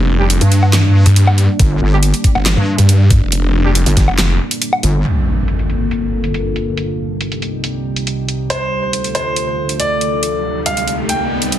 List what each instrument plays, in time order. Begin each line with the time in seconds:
Already playing: detuned saw bass F1, ambient pad G3 A#3 D4
0.20 brass ensemble G3 D4 G4
0.30 closed hi-hat
0.41 wobble bass G2, closed hi-hat
0.52 closed hi-hat
0.63 low woodblock
0.73 snare, clap, closed hi-hat
1.06 detuned saw bass G2, closed hi-hat
1.16 closed hi-hat
1.27 low woodblock
1.38 closed hi-hat
1.59 wobble bass G1, kick, closed hi-hat
1.81 wobble bass G1
1.92 brass ensemble G3 D4 G4
2.03 closed hi-hat
2.14 closed hi-hat
2.24 kick, closed hi-hat
2.35 detuned saw bass G1, low woodblock
2.46 snare, clap, closed hi-hat
2.57 wobble bass G2
2.78 detuned saw bass G2, closed hi-hat
2.89 closed hi-hat
3.11 kick, closed hi-hat
3.22 detuned saw bass F1
3.32 closed hi-hat
3.65 brass ensemble G3 D4 G4
3.75 closed hi-hat
3.86 wobble bass G1, closed hi-hat
3.97 wobble bass G1, kick, snare, closed hi-hat
4.08 detuned saw bass F1, low woodblock
4.18 detuned saw bass F1, snare, clap, closed hi-hat
4.51 closed hi-hat
4.62 closed hi-hat
4.73 low woodblock
4.83 wobble bass G1, closed hi-hat
5.05 ambient pad G2 D3 A#3 F4 A4, closed hi-hat, crash, impact
5.48 closed hi-hat
5.59 closed hi-hat
5.70 closed hi-hat
5.91 closed hi-hat
6.24 closed hi-hat
6.34 closed hi-hat
6.56 closed hi-hat
6.77 ambient pad C2 C3 G3 D#4 G4, closed hi-hat
7.21 closed hi-hat
7.32 closed hi-hat
7.42 closed hi-hat
7.64 closed hi-hat
7.96 closed hi-hat
8.07 closed hi-hat
8.29 closed hi-hat
8.50 ambient pad D2 D3 A3 F4 A4, grand piano C5, closed hi-hat, riser
8.93 closed hi-hat
9.04 closed hi-hat
9.15 grand piano C5, closed hi-hat
9.36 closed hi-hat
9.69 closed hi-hat
9.80 grand piano D5, closed hi-hat
10.01 closed hi-hat
10.23 ambient pad C2 C3 G3 D#4 G4, closed hi-hat
10.66 grand piano F5, closed hi-hat
10.77 closed hi-hat
10.88 closed hi-hat
11.09 grand piano G5, closed hi-hat
11.42 closed hi-hat
11.52 closed hi-hat